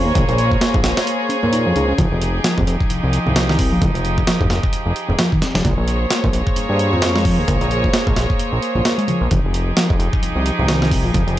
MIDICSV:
0, 0, Header, 1, 5, 480
1, 0, Start_track
1, 0, Key_signature, -4, "minor"
1, 0, Tempo, 458015
1, 159, Time_signature, 4, 2, 24, 8
1, 11940, End_track
2, 0, Start_track
2, 0, Title_t, "String section"
2, 0, Program_c, 0, 48
2, 0, Note_on_c, 0, 58, 82
2, 0, Note_on_c, 0, 68, 90
2, 0, Note_on_c, 0, 72, 73
2, 0, Note_on_c, 0, 73, 93
2, 2044, Note_off_c, 0, 72, 0
2, 2045, Note_off_c, 0, 58, 0
2, 2045, Note_off_c, 0, 73, 0
2, 2083, Note_on_c, 0, 67, 76
2, 2084, Note_on_c, 0, 53, 83
2, 2085, Note_on_c, 0, 63, 72
2, 5877, Note_off_c, 0, 68, 0
2, 5883, Note_off_c, 0, 53, 0
2, 5883, Note_off_c, 0, 67, 0
2, 5884, Note_off_c, 0, 63, 0
2, 5923, Note_on_c, 0, 58, 81
2, 5924, Note_on_c, 0, 68, 74
2, 5925, Note_on_c, 0, 73, 93
2, 5928, Note_on_c, 0, 72, 74
2, 9723, Note_off_c, 0, 58, 0
2, 9723, Note_off_c, 0, 68, 0
2, 9724, Note_off_c, 0, 73, 0
2, 9726, Note_off_c, 0, 72, 0
2, 9757, Note_on_c, 0, 53, 78
2, 9759, Note_on_c, 0, 68, 86
2, 9760, Note_on_c, 0, 67, 74
2, 9761, Note_on_c, 0, 63, 74
2, 11940, Note_off_c, 0, 53, 0
2, 11940, Note_off_c, 0, 63, 0
2, 11940, Note_off_c, 0, 67, 0
2, 11940, Note_off_c, 0, 68, 0
2, 11940, End_track
3, 0, Start_track
3, 0, Title_t, "Picked electric bass"
3, 0, Program_c, 1, 34
3, 58, Note_on_c, 1, 58, 77
3, 130, Note_off_c, 1, 58, 0
3, 159, Note_on_c, 1, 58, 82
3, 219, Note_off_c, 1, 58, 0
3, 637, Note_on_c, 1, 58, 81
3, 737, Note_off_c, 1, 58, 0
3, 1354, Note_on_c, 1, 61, 77
3, 1416, Note_off_c, 1, 61, 0
3, 1601, Note_on_c, 1, 63, 85
3, 1725, Note_off_c, 1, 63, 0
3, 1736, Note_on_c, 1, 53, 79
3, 1833, Note_off_c, 1, 53, 0
3, 1838, Note_on_c, 1, 63, 78
3, 1964, Note_off_c, 1, 63, 0
3, 1977, Note_on_c, 1, 61, 99
3, 2070, Note_off_c, 1, 61, 0
3, 2077, Note_on_c, 1, 53, 81
3, 2137, Note_off_c, 1, 53, 0
3, 2558, Note_on_c, 1, 53, 85
3, 2657, Note_off_c, 1, 53, 0
3, 3520, Note_on_c, 1, 53, 89
3, 3618, Note_off_c, 1, 53, 0
3, 3658, Note_on_c, 1, 51, 106
3, 3730, Note_off_c, 1, 51, 0
3, 3762, Note_on_c, 1, 60, 78
3, 3893, Note_off_c, 1, 60, 0
3, 3903, Note_on_c, 1, 53, 73
3, 3972, Note_off_c, 1, 53, 0
3, 4003, Note_on_c, 1, 53, 84
3, 4060, Note_off_c, 1, 53, 0
3, 4482, Note_on_c, 1, 53, 83
3, 4580, Note_off_c, 1, 53, 0
3, 5441, Note_on_c, 1, 53, 87
3, 5539, Note_off_c, 1, 53, 0
3, 5575, Note_on_c, 1, 51, 111
3, 5649, Note_off_c, 1, 51, 0
3, 5679, Note_on_c, 1, 60, 77
3, 5809, Note_off_c, 1, 60, 0
3, 5816, Note_on_c, 1, 53, 79
3, 5889, Note_off_c, 1, 53, 0
3, 5919, Note_on_c, 1, 58, 84
3, 5979, Note_off_c, 1, 58, 0
3, 6399, Note_on_c, 1, 58, 83
3, 6498, Note_off_c, 1, 58, 0
3, 7359, Note_on_c, 1, 58, 88
3, 7458, Note_off_c, 1, 58, 0
3, 7499, Note_on_c, 1, 56, 109
3, 7570, Note_off_c, 1, 56, 0
3, 7604, Note_on_c, 1, 53, 82
3, 7734, Note_off_c, 1, 53, 0
3, 7742, Note_on_c, 1, 58, 78
3, 7812, Note_off_c, 1, 58, 0
3, 7840, Note_on_c, 1, 58, 84
3, 7899, Note_off_c, 1, 58, 0
3, 8315, Note_on_c, 1, 58, 83
3, 8416, Note_off_c, 1, 58, 0
3, 9274, Note_on_c, 1, 58, 88
3, 9376, Note_off_c, 1, 58, 0
3, 9411, Note_on_c, 1, 56, 108
3, 9486, Note_off_c, 1, 56, 0
3, 9514, Note_on_c, 1, 53, 79
3, 9649, Note_off_c, 1, 53, 0
3, 9654, Note_on_c, 1, 58, 78
3, 9728, Note_off_c, 1, 58, 0
3, 9756, Note_on_c, 1, 53, 81
3, 9817, Note_off_c, 1, 53, 0
3, 10238, Note_on_c, 1, 53, 81
3, 10338, Note_off_c, 1, 53, 0
3, 11199, Note_on_c, 1, 51, 107
3, 11298, Note_off_c, 1, 51, 0
3, 11338, Note_on_c, 1, 51, 110
3, 11410, Note_off_c, 1, 51, 0
3, 11439, Note_on_c, 1, 60, 78
3, 11571, Note_off_c, 1, 60, 0
3, 11579, Note_on_c, 1, 53, 76
3, 11650, Note_off_c, 1, 53, 0
3, 11675, Note_on_c, 1, 53, 85
3, 11737, Note_off_c, 1, 53, 0
3, 11940, End_track
4, 0, Start_track
4, 0, Title_t, "Analog synth bass"
4, 0, Program_c, 2, 38
4, 56, Note_on_c, 2, 39, 82
4, 131, Note_off_c, 2, 39, 0
4, 159, Note_on_c, 2, 34, 95
4, 261, Note_off_c, 2, 34, 0
4, 299, Note_on_c, 2, 34, 98
4, 596, Note_off_c, 2, 34, 0
4, 778, Note_on_c, 2, 34, 105
4, 852, Note_off_c, 2, 34, 0
4, 876, Note_on_c, 2, 34, 98
4, 979, Note_off_c, 2, 34, 0
4, 1500, Note_on_c, 2, 46, 86
4, 1741, Note_on_c, 2, 41, 99
4, 1757, Note_off_c, 2, 46, 0
4, 1813, Note_off_c, 2, 41, 0
4, 1843, Note_on_c, 2, 37, 89
4, 2027, Note_off_c, 2, 37, 0
4, 2079, Note_on_c, 2, 29, 99
4, 2180, Note_off_c, 2, 29, 0
4, 2223, Note_on_c, 2, 29, 96
4, 2518, Note_off_c, 2, 29, 0
4, 2698, Note_on_c, 2, 29, 98
4, 2772, Note_off_c, 2, 29, 0
4, 2799, Note_on_c, 2, 29, 97
4, 2900, Note_off_c, 2, 29, 0
4, 3038, Note_on_c, 2, 36, 44
4, 3150, Note_off_c, 2, 36, 0
4, 3180, Note_on_c, 2, 36, 83
4, 3344, Note_off_c, 2, 36, 0
4, 3419, Note_on_c, 2, 36, 79
4, 3899, Note_on_c, 2, 34, 84
4, 3915, Note_off_c, 2, 36, 0
4, 3972, Note_off_c, 2, 34, 0
4, 3999, Note_on_c, 2, 29, 95
4, 4101, Note_off_c, 2, 29, 0
4, 4135, Note_on_c, 2, 29, 95
4, 4434, Note_off_c, 2, 29, 0
4, 4617, Note_on_c, 2, 29, 99
4, 4691, Note_off_c, 2, 29, 0
4, 4715, Note_on_c, 2, 29, 101
4, 4818, Note_off_c, 2, 29, 0
4, 5091, Note_on_c, 2, 29, 93
4, 5169, Note_off_c, 2, 29, 0
4, 5330, Note_on_c, 2, 29, 82
4, 5408, Note_off_c, 2, 29, 0
4, 5811, Note_on_c, 2, 29, 106
4, 5889, Note_off_c, 2, 29, 0
4, 5916, Note_on_c, 2, 34, 99
4, 6019, Note_off_c, 2, 34, 0
4, 6051, Note_on_c, 2, 34, 98
4, 6352, Note_off_c, 2, 34, 0
4, 6536, Note_on_c, 2, 34, 107
4, 6611, Note_off_c, 2, 34, 0
4, 6633, Note_on_c, 2, 34, 98
4, 6738, Note_off_c, 2, 34, 0
4, 6876, Note_on_c, 2, 43, 45
4, 6989, Note_off_c, 2, 43, 0
4, 7014, Note_on_c, 2, 43, 84
4, 7252, Note_on_c, 2, 41, 77
4, 7268, Note_off_c, 2, 43, 0
4, 7732, Note_on_c, 2, 39, 81
4, 7748, Note_off_c, 2, 41, 0
4, 7809, Note_off_c, 2, 39, 0
4, 7838, Note_on_c, 2, 34, 95
4, 7940, Note_off_c, 2, 34, 0
4, 7977, Note_on_c, 2, 34, 98
4, 8275, Note_off_c, 2, 34, 0
4, 8455, Note_on_c, 2, 34, 107
4, 8531, Note_off_c, 2, 34, 0
4, 8557, Note_on_c, 2, 34, 100
4, 8660, Note_off_c, 2, 34, 0
4, 8931, Note_on_c, 2, 34, 88
4, 9009, Note_off_c, 2, 34, 0
4, 9174, Note_on_c, 2, 34, 85
4, 9250, Note_off_c, 2, 34, 0
4, 9654, Note_on_c, 2, 34, 105
4, 9730, Note_off_c, 2, 34, 0
4, 9757, Note_on_c, 2, 29, 100
4, 9860, Note_off_c, 2, 29, 0
4, 9895, Note_on_c, 2, 29, 96
4, 10194, Note_off_c, 2, 29, 0
4, 10376, Note_on_c, 2, 29, 100
4, 10451, Note_off_c, 2, 29, 0
4, 10472, Note_on_c, 2, 29, 102
4, 10577, Note_off_c, 2, 29, 0
4, 10716, Note_on_c, 2, 36, 43
4, 10829, Note_off_c, 2, 36, 0
4, 10853, Note_on_c, 2, 36, 80
4, 11020, Note_off_c, 2, 36, 0
4, 11098, Note_on_c, 2, 36, 80
4, 11572, Note_on_c, 2, 34, 85
4, 11587, Note_off_c, 2, 36, 0
4, 11649, Note_off_c, 2, 34, 0
4, 11678, Note_on_c, 2, 29, 98
4, 11780, Note_off_c, 2, 29, 0
4, 11812, Note_on_c, 2, 29, 99
4, 11940, Note_off_c, 2, 29, 0
4, 11940, End_track
5, 0, Start_track
5, 0, Title_t, "Drums"
5, 160, Note_on_c, 9, 42, 94
5, 161, Note_on_c, 9, 36, 121
5, 173, Note_on_c, 9, 63, 85
5, 265, Note_off_c, 9, 42, 0
5, 266, Note_off_c, 9, 36, 0
5, 278, Note_off_c, 9, 63, 0
5, 300, Note_on_c, 9, 42, 45
5, 402, Note_off_c, 9, 42, 0
5, 402, Note_on_c, 9, 42, 74
5, 507, Note_off_c, 9, 42, 0
5, 540, Note_on_c, 9, 36, 90
5, 643, Note_on_c, 9, 38, 113
5, 643, Note_on_c, 9, 42, 86
5, 645, Note_off_c, 9, 36, 0
5, 748, Note_off_c, 9, 38, 0
5, 748, Note_off_c, 9, 42, 0
5, 780, Note_on_c, 9, 36, 102
5, 790, Note_on_c, 9, 64, 85
5, 878, Note_on_c, 9, 38, 108
5, 878, Note_on_c, 9, 42, 79
5, 884, Note_off_c, 9, 36, 0
5, 894, Note_off_c, 9, 64, 0
5, 983, Note_off_c, 9, 38, 0
5, 983, Note_off_c, 9, 42, 0
5, 1019, Note_on_c, 9, 38, 102
5, 1019, Note_on_c, 9, 42, 79
5, 1122, Note_off_c, 9, 42, 0
5, 1122, Note_on_c, 9, 42, 87
5, 1124, Note_off_c, 9, 38, 0
5, 1227, Note_off_c, 9, 42, 0
5, 1361, Note_on_c, 9, 42, 71
5, 1466, Note_off_c, 9, 42, 0
5, 1499, Note_on_c, 9, 64, 83
5, 1600, Note_on_c, 9, 42, 84
5, 1603, Note_off_c, 9, 64, 0
5, 1705, Note_off_c, 9, 42, 0
5, 1842, Note_on_c, 9, 42, 63
5, 1848, Note_on_c, 9, 63, 57
5, 1946, Note_off_c, 9, 42, 0
5, 1953, Note_off_c, 9, 63, 0
5, 2079, Note_on_c, 9, 42, 96
5, 2079, Note_on_c, 9, 63, 92
5, 2081, Note_on_c, 9, 36, 121
5, 2184, Note_off_c, 9, 42, 0
5, 2184, Note_off_c, 9, 63, 0
5, 2186, Note_off_c, 9, 36, 0
5, 2322, Note_on_c, 9, 42, 75
5, 2426, Note_off_c, 9, 42, 0
5, 2561, Note_on_c, 9, 38, 110
5, 2561, Note_on_c, 9, 42, 88
5, 2666, Note_off_c, 9, 38, 0
5, 2666, Note_off_c, 9, 42, 0
5, 2701, Note_on_c, 9, 36, 95
5, 2705, Note_on_c, 9, 64, 84
5, 2801, Note_on_c, 9, 42, 69
5, 2805, Note_off_c, 9, 36, 0
5, 2810, Note_off_c, 9, 64, 0
5, 2906, Note_off_c, 9, 42, 0
5, 2940, Note_on_c, 9, 36, 92
5, 3040, Note_on_c, 9, 42, 89
5, 3044, Note_off_c, 9, 36, 0
5, 3144, Note_off_c, 9, 42, 0
5, 3281, Note_on_c, 9, 42, 72
5, 3385, Note_off_c, 9, 42, 0
5, 3423, Note_on_c, 9, 64, 82
5, 3521, Note_on_c, 9, 38, 117
5, 3521, Note_on_c, 9, 42, 92
5, 3528, Note_off_c, 9, 64, 0
5, 3625, Note_off_c, 9, 38, 0
5, 3625, Note_off_c, 9, 42, 0
5, 3662, Note_on_c, 9, 38, 52
5, 3760, Note_on_c, 9, 46, 83
5, 3761, Note_on_c, 9, 36, 101
5, 3767, Note_off_c, 9, 38, 0
5, 3865, Note_off_c, 9, 46, 0
5, 3866, Note_off_c, 9, 36, 0
5, 4000, Note_on_c, 9, 42, 97
5, 4000, Note_on_c, 9, 63, 105
5, 4001, Note_on_c, 9, 36, 120
5, 4105, Note_off_c, 9, 42, 0
5, 4105, Note_off_c, 9, 63, 0
5, 4106, Note_off_c, 9, 36, 0
5, 4142, Note_on_c, 9, 42, 47
5, 4241, Note_off_c, 9, 42, 0
5, 4241, Note_on_c, 9, 42, 69
5, 4346, Note_off_c, 9, 42, 0
5, 4379, Note_on_c, 9, 36, 89
5, 4478, Note_on_c, 9, 38, 113
5, 4478, Note_on_c, 9, 42, 89
5, 4484, Note_off_c, 9, 36, 0
5, 4583, Note_off_c, 9, 38, 0
5, 4583, Note_off_c, 9, 42, 0
5, 4618, Note_on_c, 9, 36, 98
5, 4622, Note_on_c, 9, 64, 81
5, 4716, Note_on_c, 9, 38, 58
5, 4716, Note_on_c, 9, 42, 70
5, 4723, Note_off_c, 9, 36, 0
5, 4727, Note_off_c, 9, 64, 0
5, 4821, Note_off_c, 9, 38, 0
5, 4821, Note_off_c, 9, 42, 0
5, 4857, Note_on_c, 9, 36, 95
5, 4955, Note_on_c, 9, 42, 89
5, 4962, Note_off_c, 9, 36, 0
5, 5059, Note_off_c, 9, 42, 0
5, 5197, Note_on_c, 9, 42, 70
5, 5302, Note_off_c, 9, 42, 0
5, 5341, Note_on_c, 9, 64, 82
5, 5435, Note_on_c, 9, 38, 106
5, 5435, Note_on_c, 9, 42, 81
5, 5446, Note_off_c, 9, 64, 0
5, 5540, Note_off_c, 9, 38, 0
5, 5540, Note_off_c, 9, 42, 0
5, 5578, Note_on_c, 9, 36, 86
5, 5679, Note_on_c, 9, 38, 52
5, 5679, Note_on_c, 9, 42, 65
5, 5683, Note_off_c, 9, 36, 0
5, 5784, Note_off_c, 9, 38, 0
5, 5784, Note_off_c, 9, 42, 0
5, 5818, Note_on_c, 9, 38, 109
5, 5818, Note_on_c, 9, 42, 79
5, 5919, Note_off_c, 9, 42, 0
5, 5919, Note_on_c, 9, 36, 117
5, 5919, Note_on_c, 9, 42, 93
5, 5922, Note_on_c, 9, 63, 104
5, 5923, Note_off_c, 9, 38, 0
5, 6024, Note_off_c, 9, 36, 0
5, 6024, Note_off_c, 9, 42, 0
5, 6027, Note_off_c, 9, 63, 0
5, 6158, Note_on_c, 9, 42, 71
5, 6263, Note_off_c, 9, 42, 0
5, 6398, Note_on_c, 9, 38, 111
5, 6398, Note_on_c, 9, 42, 85
5, 6503, Note_off_c, 9, 38, 0
5, 6503, Note_off_c, 9, 42, 0
5, 6538, Note_on_c, 9, 36, 98
5, 6544, Note_on_c, 9, 64, 89
5, 6638, Note_on_c, 9, 42, 73
5, 6643, Note_off_c, 9, 36, 0
5, 6649, Note_off_c, 9, 64, 0
5, 6742, Note_off_c, 9, 42, 0
5, 6778, Note_on_c, 9, 36, 94
5, 6878, Note_on_c, 9, 42, 86
5, 6883, Note_off_c, 9, 36, 0
5, 6983, Note_off_c, 9, 42, 0
5, 7119, Note_on_c, 9, 42, 70
5, 7224, Note_off_c, 9, 42, 0
5, 7262, Note_on_c, 9, 64, 82
5, 7357, Note_on_c, 9, 38, 120
5, 7357, Note_on_c, 9, 42, 89
5, 7367, Note_off_c, 9, 64, 0
5, 7462, Note_off_c, 9, 38, 0
5, 7462, Note_off_c, 9, 42, 0
5, 7499, Note_on_c, 9, 38, 52
5, 7599, Note_on_c, 9, 36, 105
5, 7599, Note_on_c, 9, 46, 83
5, 7604, Note_off_c, 9, 38, 0
5, 7703, Note_off_c, 9, 46, 0
5, 7704, Note_off_c, 9, 36, 0
5, 7839, Note_on_c, 9, 36, 120
5, 7839, Note_on_c, 9, 42, 94
5, 7845, Note_on_c, 9, 63, 92
5, 7943, Note_off_c, 9, 42, 0
5, 7944, Note_off_c, 9, 36, 0
5, 7950, Note_off_c, 9, 63, 0
5, 7977, Note_on_c, 9, 42, 45
5, 8080, Note_off_c, 9, 42, 0
5, 8080, Note_on_c, 9, 42, 70
5, 8184, Note_off_c, 9, 42, 0
5, 8218, Note_on_c, 9, 36, 93
5, 8316, Note_on_c, 9, 38, 117
5, 8316, Note_on_c, 9, 42, 86
5, 8322, Note_off_c, 9, 36, 0
5, 8421, Note_off_c, 9, 38, 0
5, 8421, Note_off_c, 9, 42, 0
5, 8455, Note_on_c, 9, 64, 76
5, 8457, Note_on_c, 9, 36, 96
5, 8556, Note_on_c, 9, 38, 59
5, 8556, Note_on_c, 9, 42, 72
5, 8560, Note_off_c, 9, 64, 0
5, 8562, Note_off_c, 9, 36, 0
5, 8661, Note_off_c, 9, 38, 0
5, 8661, Note_off_c, 9, 42, 0
5, 8698, Note_on_c, 9, 36, 94
5, 8798, Note_on_c, 9, 42, 89
5, 8802, Note_off_c, 9, 36, 0
5, 8903, Note_off_c, 9, 42, 0
5, 9038, Note_on_c, 9, 42, 68
5, 9143, Note_off_c, 9, 42, 0
5, 9176, Note_on_c, 9, 64, 71
5, 9276, Note_on_c, 9, 38, 119
5, 9276, Note_on_c, 9, 42, 88
5, 9280, Note_off_c, 9, 64, 0
5, 9381, Note_off_c, 9, 38, 0
5, 9381, Note_off_c, 9, 42, 0
5, 9418, Note_on_c, 9, 42, 45
5, 9514, Note_on_c, 9, 63, 67
5, 9517, Note_off_c, 9, 42, 0
5, 9517, Note_on_c, 9, 42, 69
5, 9619, Note_off_c, 9, 63, 0
5, 9622, Note_off_c, 9, 42, 0
5, 9756, Note_on_c, 9, 42, 99
5, 9758, Note_on_c, 9, 36, 120
5, 9765, Note_on_c, 9, 63, 92
5, 9861, Note_off_c, 9, 42, 0
5, 9863, Note_off_c, 9, 36, 0
5, 9870, Note_off_c, 9, 63, 0
5, 9999, Note_on_c, 9, 42, 72
5, 10104, Note_off_c, 9, 42, 0
5, 10236, Note_on_c, 9, 38, 116
5, 10236, Note_on_c, 9, 42, 88
5, 10341, Note_off_c, 9, 38, 0
5, 10341, Note_off_c, 9, 42, 0
5, 10376, Note_on_c, 9, 64, 77
5, 10377, Note_on_c, 9, 36, 101
5, 10478, Note_on_c, 9, 42, 72
5, 10481, Note_off_c, 9, 64, 0
5, 10482, Note_off_c, 9, 36, 0
5, 10583, Note_off_c, 9, 42, 0
5, 10618, Note_on_c, 9, 36, 94
5, 10719, Note_on_c, 9, 42, 89
5, 10723, Note_off_c, 9, 36, 0
5, 10824, Note_off_c, 9, 42, 0
5, 10959, Note_on_c, 9, 42, 70
5, 11064, Note_off_c, 9, 42, 0
5, 11102, Note_on_c, 9, 64, 67
5, 11198, Note_on_c, 9, 38, 113
5, 11198, Note_on_c, 9, 42, 89
5, 11207, Note_off_c, 9, 64, 0
5, 11302, Note_off_c, 9, 38, 0
5, 11302, Note_off_c, 9, 42, 0
5, 11340, Note_on_c, 9, 38, 52
5, 11438, Note_on_c, 9, 46, 85
5, 11439, Note_on_c, 9, 36, 102
5, 11445, Note_off_c, 9, 38, 0
5, 11543, Note_off_c, 9, 46, 0
5, 11544, Note_off_c, 9, 36, 0
5, 11676, Note_on_c, 9, 63, 88
5, 11678, Note_on_c, 9, 42, 99
5, 11680, Note_on_c, 9, 36, 118
5, 11780, Note_off_c, 9, 63, 0
5, 11783, Note_off_c, 9, 42, 0
5, 11785, Note_off_c, 9, 36, 0
5, 11819, Note_on_c, 9, 42, 47
5, 11923, Note_off_c, 9, 42, 0
5, 11940, End_track
0, 0, End_of_file